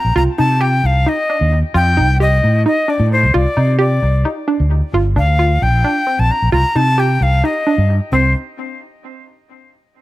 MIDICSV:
0, 0, Header, 1, 4, 480
1, 0, Start_track
1, 0, Tempo, 454545
1, 171, Time_signature, 7, 3, 24, 8
1, 10580, End_track
2, 0, Start_track
2, 0, Title_t, "Flute"
2, 0, Program_c, 0, 73
2, 0, Note_on_c, 0, 82, 74
2, 175, Note_off_c, 0, 82, 0
2, 181, Note_on_c, 0, 82, 89
2, 244, Note_off_c, 0, 82, 0
2, 409, Note_on_c, 0, 81, 81
2, 648, Note_on_c, 0, 79, 82
2, 664, Note_off_c, 0, 81, 0
2, 908, Note_on_c, 0, 77, 78
2, 924, Note_off_c, 0, 79, 0
2, 1147, Note_on_c, 0, 75, 82
2, 1163, Note_off_c, 0, 77, 0
2, 1679, Note_off_c, 0, 75, 0
2, 1857, Note_on_c, 0, 79, 87
2, 2301, Note_off_c, 0, 79, 0
2, 2339, Note_on_c, 0, 75, 78
2, 2782, Note_off_c, 0, 75, 0
2, 2819, Note_on_c, 0, 75, 77
2, 3061, Note_on_c, 0, 74, 73
2, 3077, Note_off_c, 0, 75, 0
2, 3290, Note_off_c, 0, 74, 0
2, 3296, Note_on_c, 0, 72, 72
2, 3529, Note_on_c, 0, 74, 83
2, 3545, Note_off_c, 0, 72, 0
2, 4003, Note_off_c, 0, 74, 0
2, 4009, Note_on_c, 0, 74, 66
2, 4512, Note_off_c, 0, 74, 0
2, 5472, Note_on_c, 0, 77, 87
2, 5942, Note_on_c, 0, 79, 76
2, 5958, Note_off_c, 0, 77, 0
2, 6542, Note_on_c, 0, 81, 84
2, 6558, Note_off_c, 0, 79, 0
2, 6668, Note_on_c, 0, 82, 84
2, 6684, Note_off_c, 0, 81, 0
2, 6884, Note_off_c, 0, 82, 0
2, 6890, Note_on_c, 0, 82, 92
2, 7142, Note_on_c, 0, 81, 95
2, 7158, Note_off_c, 0, 82, 0
2, 7388, Note_on_c, 0, 79, 80
2, 7404, Note_off_c, 0, 81, 0
2, 7632, Note_on_c, 0, 77, 81
2, 7648, Note_off_c, 0, 79, 0
2, 7870, Note_on_c, 0, 75, 69
2, 7885, Note_off_c, 0, 77, 0
2, 8400, Note_off_c, 0, 75, 0
2, 8576, Note_on_c, 0, 72, 72
2, 8796, Note_off_c, 0, 72, 0
2, 10580, End_track
3, 0, Start_track
3, 0, Title_t, "Synth arpeggio sound"
3, 0, Program_c, 1, 84
3, 165, Note_on_c, 1, 65, 97
3, 335, Note_off_c, 1, 65, 0
3, 405, Note_on_c, 1, 63, 72
3, 575, Note_off_c, 1, 63, 0
3, 640, Note_on_c, 1, 67, 84
3, 979, Note_off_c, 1, 67, 0
3, 1125, Note_on_c, 1, 63, 71
3, 1294, Note_off_c, 1, 63, 0
3, 1368, Note_on_c, 1, 62, 73
3, 1704, Note_off_c, 1, 62, 0
3, 1841, Note_on_c, 1, 65, 92
3, 2012, Note_off_c, 1, 65, 0
3, 2082, Note_on_c, 1, 63, 69
3, 2252, Note_off_c, 1, 63, 0
3, 2326, Note_on_c, 1, 67, 80
3, 2663, Note_off_c, 1, 67, 0
3, 2807, Note_on_c, 1, 63, 78
3, 2976, Note_off_c, 1, 63, 0
3, 3043, Note_on_c, 1, 62, 65
3, 3380, Note_off_c, 1, 62, 0
3, 3528, Note_on_c, 1, 65, 91
3, 3696, Note_off_c, 1, 65, 0
3, 3767, Note_on_c, 1, 63, 71
3, 3936, Note_off_c, 1, 63, 0
3, 3997, Note_on_c, 1, 67, 86
3, 4337, Note_off_c, 1, 67, 0
3, 4490, Note_on_c, 1, 63, 78
3, 4658, Note_off_c, 1, 63, 0
3, 4728, Note_on_c, 1, 62, 75
3, 5063, Note_off_c, 1, 62, 0
3, 5218, Note_on_c, 1, 65, 93
3, 5383, Note_off_c, 1, 65, 0
3, 5451, Note_on_c, 1, 62, 72
3, 5618, Note_off_c, 1, 62, 0
3, 5693, Note_on_c, 1, 65, 81
3, 6027, Note_off_c, 1, 65, 0
3, 6171, Note_on_c, 1, 62, 83
3, 6338, Note_off_c, 1, 62, 0
3, 6407, Note_on_c, 1, 60, 66
3, 6743, Note_off_c, 1, 60, 0
3, 6889, Note_on_c, 1, 65, 87
3, 7057, Note_off_c, 1, 65, 0
3, 7134, Note_on_c, 1, 63, 76
3, 7300, Note_off_c, 1, 63, 0
3, 7370, Note_on_c, 1, 67, 78
3, 7705, Note_off_c, 1, 67, 0
3, 7854, Note_on_c, 1, 63, 75
3, 8020, Note_off_c, 1, 63, 0
3, 8096, Note_on_c, 1, 62, 72
3, 8429, Note_off_c, 1, 62, 0
3, 8583, Note_on_c, 1, 60, 81
3, 8800, Note_off_c, 1, 60, 0
3, 10580, End_track
4, 0, Start_track
4, 0, Title_t, "Fretless electric bass"
4, 0, Program_c, 2, 35
4, 47, Note_on_c, 2, 34, 74
4, 158, Note_off_c, 2, 34, 0
4, 165, Note_on_c, 2, 36, 78
4, 277, Note_off_c, 2, 36, 0
4, 413, Note_on_c, 2, 48, 73
4, 850, Note_off_c, 2, 48, 0
4, 881, Note_on_c, 2, 36, 67
4, 1104, Note_off_c, 2, 36, 0
4, 1488, Note_on_c, 2, 39, 78
4, 1708, Note_off_c, 2, 39, 0
4, 1842, Note_on_c, 2, 41, 92
4, 2087, Note_on_c, 2, 36, 77
4, 2102, Note_off_c, 2, 41, 0
4, 2527, Note_off_c, 2, 36, 0
4, 2573, Note_on_c, 2, 45, 90
4, 2791, Note_off_c, 2, 45, 0
4, 3163, Note_on_c, 2, 45, 91
4, 3411, Note_on_c, 2, 37, 71
4, 3427, Note_off_c, 2, 45, 0
4, 3520, Note_off_c, 2, 37, 0
4, 3535, Note_on_c, 2, 36, 80
4, 3643, Note_off_c, 2, 36, 0
4, 3769, Note_on_c, 2, 48, 81
4, 4207, Note_off_c, 2, 48, 0
4, 4247, Note_on_c, 2, 36, 71
4, 4468, Note_off_c, 2, 36, 0
4, 4855, Note_on_c, 2, 38, 75
4, 5071, Note_off_c, 2, 38, 0
4, 5208, Note_on_c, 2, 31, 82
4, 5447, Note_on_c, 2, 38, 88
4, 5463, Note_off_c, 2, 31, 0
4, 5886, Note_off_c, 2, 38, 0
4, 5933, Note_on_c, 2, 34, 89
4, 6150, Note_off_c, 2, 34, 0
4, 6536, Note_on_c, 2, 34, 87
4, 6643, Note_off_c, 2, 34, 0
4, 6781, Note_on_c, 2, 34, 69
4, 6883, Note_off_c, 2, 34, 0
4, 6889, Note_on_c, 2, 36, 82
4, 6999, Note_off_c, 2, 36, 0
4, 7131, Note_on_c, 2, 48, 75
4, 7568, Note_off_c, 2, 48, 0
4, 7609, Note_on_c, 2, 36, 72
4, 7828, Note_off_c, 2, 36, 0
4, 8215, Note_on_c, 2, 43, 77
4, 8431, Note_off_c, 2, 43, 0
4, 8574, Note_on_c, 2, 36, 87
4, 8795, Note_off_c, 2, 36, 0
4, 10580, End_track
0, 0, End_of_file